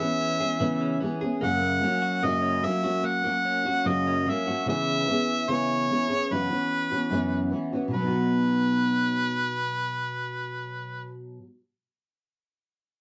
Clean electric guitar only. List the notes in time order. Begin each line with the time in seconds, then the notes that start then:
Already playing: E3 C#4 G#4
0.00 B3
0.21 C#4
0.41 G#4
0.60 B3
0.80 C#4
1.00 B3
1.21 G#4
1.41 A#3
1.62 A#3
1.83 C#4
2.02 F#4
2.23 A#3
2.42 C#4
2.63 A#3
2.84 F#4
3.04 A#3
3.24 A#3
3.45 C#4
3.66 F#4
3.86 A#3
4.07 C#4
4.26 A#3
4.47 F#4